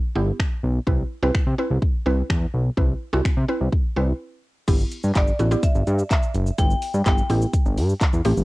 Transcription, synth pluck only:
0.15 0.56 B3 medium
0.15 0.56 E4 medium
0.15 0.57 G4 medium
0.87 1.07 C4 medium
0.87 1.07 E4 medium
0.87 1.08 B4 medium
1.23 1.43 C4 medium
1.23 1.43 E4 medium
1.23 1.43 B4 loud
1.58 1.86 C4 medium
1.58 1.86 E4 medium
1.58 1.86 B4 loud
2.06 2.47 C4 medium
2.06 2.47 E4 medium
2.06 2.47 B4 medium
2.77 2.98 C4 medium
2.77 2.98 E4 medium
2.77 2.98 B4 medium
3.13 3.33 C4 medium
3.13 3.34 E4 medium
3.13 3.34 F#4 loud
3.48 3.76 C4 medium
3.48 3.76 E4 medium
3.48 3.76 B4 loud
3.96 4.37 C4 medium
3.96 4.37 E4 medium
3.96 4.37 B4 medium
4.68 5.09 B3 medium
4.68 5.09 E4 medium
4.68 5.09 G4 medium
5.39 5.46 B3 medium
5.39 5.46 E4 medium
5.39 5.46 F#4 medium
5.51 6.06 B3 medium
5.51 6.06 E4 medium
5.51 6.06 G4 medium
6.58 6.86 B3 medium
6.58 6.86 E4 medium
6.58 6.86 G4 medium
7.06 7.20 B3 medium
7.06 7.20 E4 medium
7.06 7.20 G4 medium
7.30 7.84 B3 medium
7.30 7.84 E4 medium
7.30 7.85 G4 medium
8.25 8.44 A3 medium
8.25 8.44 C4 medium
8.25 8.44 G4 loud

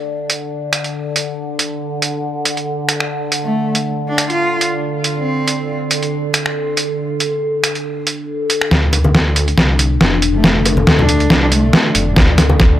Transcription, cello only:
3.43 3.75 A3 medium
4.08 4.29 D4 medium
4.30 4.61 F4 medium
5.16 5.76 C4 medium
10.35 10.66 A3 medium
10.99 11.30 D4 medium
11.42 11.50 D4 medium
11.52 11.85 A3 loud

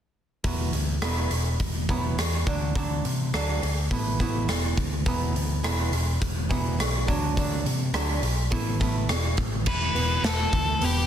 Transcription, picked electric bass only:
0.44 0.68 E1 medium
0.73 0.97 D2 medium
1.02 1.26 E1 medium
1.31 1.55 E1 medium
1.60 1.84 E1 medium
1.89 2.13 E1 medium
2.17 2.42 E2 medium
2.47 2.71 D2 medium
2.76 3.00 D2 medium
3.05 3.29 C3 medium
3.33 3.57 D2 medium
3.63 3.87 D2 medium
3.91 4.15 A1 medium
4.20 4.44 A1 medium
4.48 4.73 E1 medium
4.78 5.02 D2 medium
5.07 5.31 E1 medium
5.35 5.59 D2 medium
5.64 5.88 E1 medium
5.92 6.17 E1 medium
6.22 6.46 E1 medium
6.51 6.75 E1 medium
6.79 7.03 B1 medium
7.08 7.32 D2 medium
7.37 7.61 D2 medium
7.65 7.90 C3 medium
7.93 8.18 D2 medium
8.22 8.47 B1 medium
8.52 8.76 A1 medium
8.81 9.05 A1 medium
9.09 9.33 E1 medium
9.38 9.62 A1 medium
9.67 9.88 E1 medium
9.95 10.16 E1 medium
10.23 10.44 E1 medium
10.53 10.74 D2 medium
10.82 11.02 E1 medium

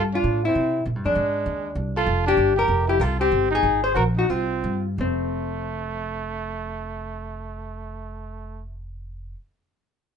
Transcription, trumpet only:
0.13 0.41 D4 medium
0.46 0.84 C4 medium
1.05 1.73 G#3 medium
1.96 2.25 F4 medium
2.26 2.55 D4 medium
2.56 2.86 G4 medium
2.88 3.01 E4 medium
3.00 3.19 F4 medium
3.19 3.49 C4 medium
3.51 3.81 D#4 medium
3.83 3.94 G#4 medium
3.94 4.04 F#4 medium
4.17 4.31 D#4 medium
4.29 4.86 C4 medium
4.99 8.64 A3 medium

